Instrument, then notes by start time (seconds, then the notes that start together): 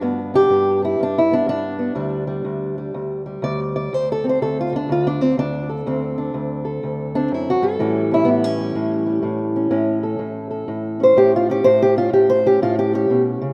steel-string acoustic guitar
Already playing: D4
0.01 G2 B3
0.34 D4 G4
0.50 G2
0.82 D4 E4
1.00 G2 D4
1.18 E4
1.31 B3 D4
1.46 G2 D4
1.79 B3
1.95 D2 G3
2.27 G3
2.45 D2
2.78 G3
2.94 D2
3.26 G3
3.42 D2 D5
3.76 D5
3.93 D2 C5
4.12 A4
4.24 C4
4.29 C5
4.41 D2 A4
4.61 F4
4.72 D3 D4
4.89 D2 F4
5.07 D4
5.21 D3 C4
5.37 D2 D4
5.69 A4
5.87 D2 C4
6.18 D4
6.34 D2
6.65 A4
6.83 D2
7.15 C4 D4
7.32 F#2 E4
7.50 F#4
7.61 G2 A4
7.79 A2 E3 G3 C#4
8.11 C#4 E4
8.25 A2 B3
8.44 C#4
8.60 G3
8.75 A2
9.07 G3
9.23 A2
9.56 C#4
9.71 A2 C#4
10.03 A4
10.19 A2
10.51 A4
10.68 A2
11.00 C#4 C5
11.17 A2 G4
11.36 F4
11.50 C#4 G4
11.64 A2 C5
11.82 G4
11.96 C#4 F4
12.13 A2 G4
12.30 C5
12.46 C#4 G4
12.62 A2 F4
12.79 G4
12.93 C#4 G4
13.10 B2
13.41 C#3